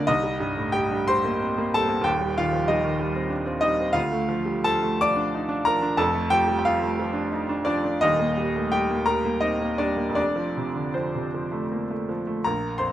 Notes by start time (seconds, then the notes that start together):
Already playing: D2 D3 D#3 F3 A#3 C4 D4 D#4 F4 D5 D#5
0.07 C2 D#4 D#5
0.24 G3
0.40 G2
0.57 A2
0.72 G3 G4 G5
0.91 G2
1.08 G3 C5 C6
1.24 A#3
1.42 C4
1.58 A#3
1.74 G3 A4 A5
1.89 A#3
2.01 D#1 D#2 G5
2.05 G4
2.21 G3
2.38 D#3 F4 F5
2.53 F3
2.68 G3 D#4 D#5
2.84 D#3
3.00 G3
3.15 C4
3.30 D4
3.46 C4
3.61 G3 D#4 D#5
3.79 C4
3.93 D2 F4 F5
4.12 A3
4.29 F3
4.45 G3
4.64 F3 A4 A5
4.83 A3
5.01 F3 D5 D6
5.16 D4
5.34 D#4
5.49 D4
5.65 F3 A#4 A#5
5.82 D4
5.97 F1 F2 A4 A5
6.14 A3
6.30 F3 G4 G5
6.48 G3
6.59 G5
6.65 F3 F4 F5
6.82 A3
6.99 F3
7.13 D4
7.32 D#4
7.49 D4
7.65 F3 D4 D5
7.84 D4
8.01 D#1 D#2 D#4 D#5
8.19 A#3
8.38 G3
8.56 A3
8.72 G3 G4 G5
8.90 A#3
9.06 G3 A#4 A#5
9.25 A#3
9.41 C4 D#4 D#5
9.61 A#3
9.78 G3 D4 D5
9.97 A#3
10.09 F2
10.15 F1 D4 D5
10.36 F3
10.57 C3
10.75 D3
10.94 F3 C4 C5
11.15 C3
11.34 F3
11.52 A3
11.72 A#3
11.91 A3
12.09 F3
12.27 A3
12.44 A#1 A#4 A#5
12.78 F2 C5 C6